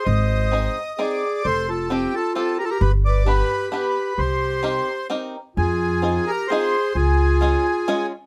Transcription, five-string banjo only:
\new Staff \with { instrumentName = "Five-string banjo" } { \time 3/4 \key c \minor \tempo 4 = 131 r4 <c' ees' aes' c''>8 r8 <c' ees' aes' c''>8 r8 | r4 <c' f' g' a'>8 r8 <c' f' g' a'>8 r8 | r4 <b d' g' b'>8 r8 <b d' g' b'>8 r8 | r4 <c' ees' g' bes'>8 r8 <c' ees' g' bes'>8 r8 |
\key f \minor r4 <c' ees' f' aes'>8 r8 <c' ees' f' aes'>8 r8 | r4 <aes des' f' aes'>8 r8 <aes des' f' aes'>8 r8 | }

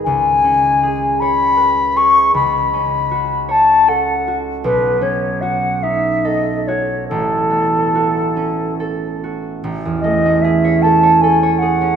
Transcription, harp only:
\new Staff \with { instrumentName = "Harp" } { \time 3/4 \key a \lydian \tempo 4 = 76 <cis, gis' b'>8 cis'8 gis'8 cis''8 b'8 gis'8 | cis,8 cis'8 fis'8 cis''8 a'8 fis'8 | b,,8 cis'8 fis'8 dis'8 a'8 fis'8 | a,,8 b8 fis'8 cis'8 a'8 fis'8 |
a,,16 e,16 a16 cis'16 gis'16 cis''16 a'16 cis''16 a'16 cis''16 gis'16 cis'16 | }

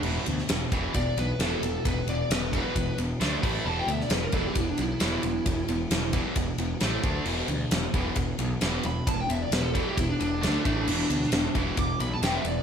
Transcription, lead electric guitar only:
\new Staff \with { instrumentName = "Lead electric guitar" } { \time 4/4 \key a \dorian \tempo 4 = 133 r2 d''8 b'8 a'4 | b'8 d''8 b'8 b'4 r4 b''8 | a''16 g''16 e''16 d''16 b'16 ais'16 a'16 g'16 e'16 d'16 e'4.~ | e'4. r2 r8 |
r2. r8 b''8 | a''16 g''16 e''16 d''16 b'16 a'16 a'16 g'16 e'16 d'16 d'4.~ | d'4. r8 d'''8 b''16 a''16 g''16 e''16 d''8 | }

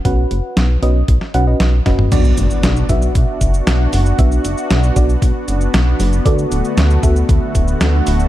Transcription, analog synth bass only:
\new Staff \with { instrumentName = "Analog synth bass" } { \clef bass \time 4/4 \key b \mixolydian \tempo 4 = 116 b,,8 fis,,8 b,,8 b,,8 b,,8 b,,8 b,,8 fis,,8 | \key b \dorian b,,8 fis,,8 b,,8 b,,8 b,,8 fis,,8 b,,8 fis,,8 | b,,8 fis,,8 b,,8 b,,8 b,,8 fis,,8 b,,8 fis,,8 | d,8 d,,8 d,8 d,8 d,8 d,,8 d,8 d,,8 | }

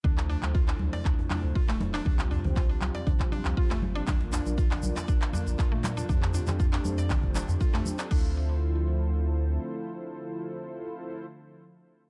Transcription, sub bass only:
\new Staff \with { instrumentName = "Sub bass" } { \clef bass \time 4/4 \key d \minor \tempo 4 = 119 d,8. d,8. d,16 r16 d,16 r8 d,16 r16 d,,8. | c,8. c,8. c,16 r16 c,16 r8 c,16 r16 g,,8. | bes,,8. bes,,8. bes,,16 r16 bes,,16 r8 bes,,16 r16 bes,8. | f,8. f,8. f,8 f,,8. f,16 r16 f,16 r8 |
d,2. r4 | r1 | }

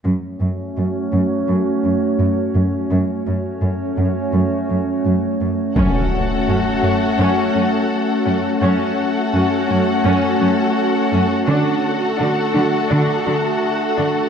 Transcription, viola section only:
\new Staff \with { instrumentName = "Viola section" } { \time 4/4 \key fis \minor \tempo 4 = 84 << { r1 | r1 | fis'1 | fis'1 |
fis'1 | } \\ { r1 | r1 | cis'8 r8 cis'8 cis'8 cis'8 cis'8 r8 cis'8 | cis'8 r8 cis'8 cis'8 cis'8 cis'8 r8 cis'8 |
d'8 r8 d'8 d'8 d'8 d'8 r8 d'8 | } >> }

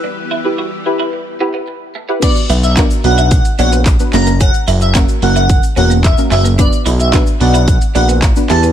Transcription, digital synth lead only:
\new Staff \with { instrumentName = "Digital synth lead" } { \time 4/4 \key b \minor \tempo 4 = 110 r1 | d''16 r8 e''16 r8 fis''8. r16 fis''16 r8. ais''16 r16 | fis''16 r8 e''16 r8 fis''8. r16 fis''16 r16 e''16 r16 e''16 r16 | d''16 r8 e''16 r8 fis''8. r16 fis''16 r8. a''16 r16 | }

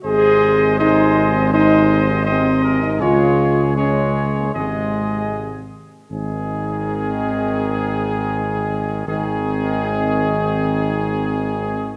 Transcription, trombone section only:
\new Staff \with { instrumentName = "Trombone section" } { \clef bass \time 4/4 \key aes \major \tempo 4 = 81 <c aes>4 <c aes>4 <c aes>4 <c aes>4 | <des aes>4 <des aes>4 <c aes>4. r8 | ees1 | ees1 | }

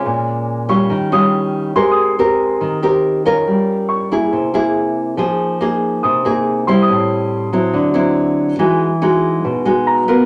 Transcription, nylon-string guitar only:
\new Staff \with { instrumentName = "Nylon-string guitar" } { \time 4/4 \key f \dorian \tempo 4 = 140 << { <aes des' f'>4. <g des' f'>4 <g des' f'>4. | <c' g' bes'>4 <c' g' bes'>4. <c' g' bes'>4 <des' f' bes'>8~ | <des' f' bes'>4. <bes fes' aes'>4 <bes e' aes'>4. | <bes ees' aes'>4 <bes ees' aes'>4. <bes ees' aes'>4 <g c' fes'>8~ |
<g c' fes'>4. <ges c' e'>4 <fis c' e'>4. | <gis dis' fis'>8 r8 <gis dis' fis'>4. <gis dis' fis'>4 <b f' bes'>8 | } \\ { bes,2 ees2 | aes2 ees2 | g2 c2 | f2 c2 |
a,2 d2 | e2 b,2 | } >> }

